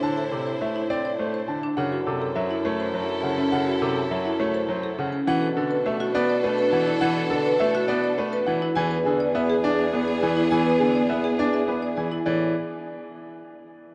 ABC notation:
X:1
M:3/4
L:1/16
Q:1/4=103
K:Ador
V:1 name="Grand piano"
a z A z e z d z c z a z | f z A z e z ^c z =c z f z | f z A z e z ^c z =c z f z | f z A z e z d z B z f z |
f z A z e z d z B z f z | ^g z ^G z e z d z B z g z | ^g z ^G z e z d z B z g z | d2 z8 z2 |]
V:2 name="Marimba"
z A z c z E z d z c z D | z F z A z E z c z A z ^C | z F z A z E z c z A z ^C | z A z B z F z d z B z E |
z A z B z F z d z B z E | z B z d z ^G z e z d z E | z B z d z ^G z e z d z E | E2 z8 z2 |]
V:3 name="String section"
[Ec]8- [Ec]3 z | [EA]12- | [EA]8- [EA]3 z | [DA]12- |
[DA]8- [DA]3 z | [B,^G]12- | [B,^G]8- [B,G]3 z | z12 |]
V:4 name="Grand piano" clef=bass
D, z C, z A, z C z A, z D, z | ^C, z =C, z F, z A, z F, z ^C, z | ^C, z =C, z F, z A, z F, z ^C, z | E, z D, z A, z B, z A, z E, z |
E, z D, z A, z B, z A, z E, z | E, z D, z B, z D z B, z E, z | E, z D, z B, z D z B, z E, z | E,2 z8 z2 |]
V:5 name="Bassoon" clef=bass
A,,12 | F,,12- | F,,12 | B,,12- |
B,,12 | E,,12- | E,,12 | A,,2 z8 z2 |]